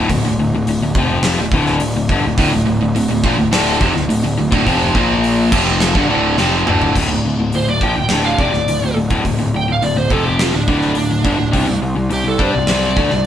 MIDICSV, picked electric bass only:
0, 0, Header, 1, 2, 480
1, 0, Start_track
1, 0, Key_signature, -1, "minor"
1, 0, Tempo, 572519
1, 71, Time_signature, 4, 2, 24, 8
1, 11120, End_track
2, 0, Start_track
2, 0, Title_t, "Picked electric bass"
2, 0, Program_c, 0, 34
2, 82, Note_on_c, 0, 26, 81
2, 188, Note_off_c, 0, 26, 0
2, 195, Note_on_c, 0, 26, 76
2, 305, Note_off_c, 0, 26, 0
2, 313, Note_on_c, 0, 26, 82
2, 424, Note_off_c, 0, 26, 0
2, 439, Note_on_c, 0, 26, 82
2, 547, Note_off_c, 0, 26, 0
2, 554, Note_on_c, 0, 26, 82
2, 664, Note_off_c, 0, 26, 0
2, 676, Note_on_c, 0, 26, 90
2, 785, Note_off_c, 0, 26, 0
2, 798, Note_on_c, 0, 29, 81
2, 1129, Note_off_c, 0, 29, 0
2, 1163, Note_on_c, 0, 26, 79
2, 1267, Note_off_c, 0, 26, 0
2, 1272, Note_on_c, 0, 26, 97
2, 1494, Note_off_c, 0, 26, 0
2, 1519, Note_on_c, 0, 26, 78
2, 1626, Note_off_c, 0, 26, 0
2, 1637, Note_on_c, 0, 26, 76
2, 1745, Note_off_c, 0, 26, 0
2, 1753, Note_on_c, 0, 31, 90
2, 1863, Note_off_c, 0, 31, 0
2, 1887, Note_on_c, 0, 26, 81
2, 1991, Note_off_c, 0, 26, 0
2, 1996, Note_on_c, 0, 26, 96
2, 2104, Note_off_c, 0, 26, 0
2, 2131, Note_on_c, 0, 26, 79
2, 2232, Note_off_c, 0, 26, 0
2, 2246, Note_on_c, 0, 26, 80
2, 2349, Note_off_c, 0, 26, 0
2, 2363, Note_on_c, 0, 26, 76
2, 2468, Note_off_c, 0, 26, 0
2, 2484, Note_on_c, 0, 26, 88
2, 2588, Note_off_c, 0, 26, 0
2, 2602, Note_on_c, 0, 26, 85
2, 2707, Note_off_c, 0, 26, 0
2, 2719, Note_on_c, 0, 34, 89
2, 2825, Note_off_c, 0, 34, 0
2, 2829, Note_on_c, 0, 26, 78
2, 2940, Note_off_c, 0, 26, 0
2, 2949, Note_on_c, 0, 26, 98
2, 3172, Note_off_c, 0, 26, 0
2, 3196, Note_on_c, 0, 29, 91
2, 3304, Note_off_c, 0, 29, 0
2, 3318, Note_on_c, 0, 26, 78
2, 3425, Note_off_c, 0, 26, 0
2, 3439, Note_on_c, 0, 26, 77
2, 3545, Note_off_c, 0, 26, 0
2, 3559, Note_on_c, 0, 26, 73
2, 3665, Note_off_c, 0, 26, 0
2, 3683, Note_on_c, 0, 26, 77
2, 3784, Note_off_c, 0, 26, 0
2, 3789, Note_on_c, 0, 26, 98
2, 3900, Note_off_c, 0, 26, 0
2, 3912, Note_on_c, 0, 29, 102
2, 4133, Note_off_c, 0, 29, 0
2, 4152, Note_on_c, 0, 34, 94
2, 4596, Note_off_c, 0, 34, 0
2, 4632, Note_on_c, 0, 29, 93
2, 4965, Note_off_c, 0, 29, 0
2, 4992, Note_on_c, 0, 31, 97
2, 5101, Note_off_c, 0, 31, 0
2, 5107, Note_on_c, 0, 26, 100
2, 5331, Note_off_c, 0, 26, 0
2, 5350, Note_on_c, 0, 29, 103
2, 5572, Note_off_c, 0, 29, 0
2, 5580, Note_on_c, 0, 26, 87
2, 5807, Note_off_c, 0, 26, 0
2, 5832, Note_on_c, 0, 26, 93
2, 5935, Note_off_c, 0, 26, 0
2, 5940, Note_on_c, 0, 26, 73
2, 6055, Note_off_c, 0, 26, 0
2, 6070, Note_on_c, 0, 26, 77
2, 6177, Note_off_c, 0, 26, 0
2, 6182, Note_on_c, 0, 26, 73
2, 6297, Note_off_c, 0, 26, 0
2, 6309, Note_on_c, 0, 26, 73
2, 6420, Note_off_c, 0, 26, 0
2, 6429, Note_on_c, 0, 26, 78
2, 6541, Note_off_c, 0, 26, 0
2, 6551, Note_on_c, 0, 34, 82
2, 6662, Note_off_c, 0, 34, 0
2, 6672, Note_on_c, 0, 26, 79
2, 6783, Note_off_c, 0, 26, 0
2, 6790, Note_on_c, 0, 26, 87
2, 7014, Note_off_c, 0, 26, 0
2, 7028, Note_on_c, 0, 29, 87
2, 7138, Note_off_c, 0, 29, 0
2, 7143, Note_on_c, 0, 26, 73
2, 7258, Note_off_c, 0, 26, 0
2, 7267, Note_on_c, 0, 26, 69
2, 7381, Note_off_c, 0, 26, 0
2, 7392, Note_on_c, 0, 26, 70
2, 7504, Note_off_c, 0, 26, 0
2, 7511, Note_on_c, 0, 26, 71
2, 7623, Note_off_c, 0, 26, 0
2, 7635, Note_on_c, 0, 26, 88
2, 7745, Note_off_c, 0, 26, 0
2, 7758, Note_on_c, 0, 26, 77
2, 7867, Note_off_c, 0, 26, 0
2, 7872, Note_on_c, 0, 26, 71
2, 7984, Note_off_c, 0, 26, 0
2, 7992, Note_on_c, 0, 26, 70
2, 8104, Note_off_c, 0, 26, 0
2, 8117, Note_on_c, 0, 26, 75
2, 8227, Note_off_c, 0, 26, 0
2, 8238, Note_on_c, 0, 26, 76
2, 8345, Note_off_c, 0, 26, 0
2, 8350, Note_on_c, 0, 26, 83
2, 8464, Note_off_c, 0, 26, 0
2, 8468, Note_on_c, 0, 29, 84
2, 8806, Note_off_c, 0, 29, 0
2, 8834, Note_on_c, 0, 26, 85
2, 8946, Note_off_c, 0, 26, 0
2, 8955, Note_on_c, 0, 26, 88
2, 9178, Note_off_c, 0, 26, 0
2, 9191, Note_on_c, 0, 26, 70
2, 9305, Note_off_c, 0, 26, 0
2, 9316, Note_on_c, 0, 26, 69
2, 9426, Note_off_c, 0, 26, 0
2, 9431, Note_on_c, 0, 31, 80
2, 9545, Note_off_c, 0, 31, 0
2, 9555, Note_on_c, 0, 26, 73
2, 9667, Note_off_c, 0, 26, 0
2, 9676, Note_on_c, 0, 36, 95
2, 9787, Note_off_c, 0, 36, 0
2, 9798, Note_on_c, 0, 36, 78
2, 9900, Note_off_c, 0, 36, 0
2, 9905, Note_on_c, 0, 36, 84
2, 10022, Note_off_c, 0, 36, 0
2, 10032, Note_on_c, 0, 36, 79
2, 10145, Note_off_c, 0, 36, 0
2, 10158, Note_on_c, 0, 36, 79
2, 10269, Note_off_c, 0, 36, 0
2, 10276, Note_on_c, 0, 36, 83
2, 10386, Note_off_c, 0, 36, 0
2, 10391, Note_on_c, 0, 43, 85
2, 10505, Note_off_c, 0, 43, 0
2, 10521, Note_on_c, 0, 36, 71
2, 10630, Note_off_c, 0, 36, 0
2, 10652, Note_on_c, 0, 36, 97
2, 10868, Note_off_c, 0, 36, 0
2, 10877, Note_on_c, 0, 38, 93
2, 10988, Note_off_c, 0, 38, 0
2, 11002, Note_on_c, 0, 36, 74
2, 11111, Note_off_c, 0, 36, 0
2, 11120, End_track
0, 0, End_of_file